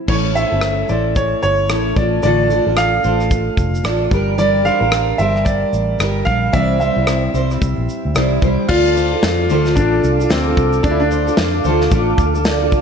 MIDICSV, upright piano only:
0, 0, Header, 1, 2, 480
1, 0, Start_track
1, 0, Key_signature, -1, "minor"
1, 0, Tempo, 537634
1, 74, Time_signature, 4, 2, 24, 8
1, 11440, End_track
2, 0, Start_track
2, 0, Title_t, "Upright piano"
2, 0, Program_c, 0, 0
2, 85, Note_on_c, 0, 73, 71
2, 138, Note_off_c, 0, 73, 0
2, 316, Note_on_c, 0, 76, 74
2, 797, Note_on_c, 0, 74, 62
2, 811, Note_off_c, 0, 76, 0
2, 1037, Note_on_c, 0, 73, 75
2, 1044, Note_off_c, 0, 74, 0
2, 1259, Note_off_c, 0, 73, 0
2, 1273, Note_on_c, 0, 73, 98
2, 1721, Note_off_c, 0, 73, 0
2, 1754, Note_on_c, 0, 74, 73
2, 1978, Note_off_c, 0, 74, 0
2, 1992, Note_on_c, 0, 74, 91
2, 2472, Note_on_c, 0, 77, 98
2, 2489, Note_off_c, 0, 74, 0
2, 3399, Note_off_c, 0, 77, 0
2, 3918, Note_on_c, 0, 74, 86
2, 4152, Note_on_c, 0, 77, 88
2, 4165, Note_off_c, 0, 74, 0
2, 4601, Note_off_c, 0, 77, 0
2, 4627, Note_on_c, 0, 76, 67
2, 4864, Note_on_c, 0, 74, 75
2, 4880, Note_off_c, 0, 76, 0
2, 5317, Note_off_c, 0, 74, 0
2, 5581, Note_on_c, 0, 77, 95
2, 5832, Note_on_c, 0, 76, 100
2, 5837, Note_off_c, 0, 77, 0
2, 6057, Note_off_c, 0, 76, 0
2, 6071, Note_on_c, 0, 76, 82
2, 7479, Note_off_c, 0, 76, 0
2, 7754, Note_on_c, 0, 65, 107
2, 8710, Note_on_c, 0, 62, 90
2, 8745, Note_off_c, 0, 65, 0
2, 9195, Note_on_c, 0, 60, 76
2, 9209, Note_off_c, 0, 62, 0
2, 9669, Note_on_c, 0, 62, 88
2, 9691, Note_off_c, 0, 60, 0
2, 9741, Note_on_c, 0, 64, 72
2, 9743, Note_off_c, 0, 62, 0
2, 9819, Note_on_c, 0, 62, 93
2, 9820, Note_off_c, 0, 64, 0
2, 10359, Note_off_c, 0, 62, 0
2, 11440, End_track
0, 0, End_of_file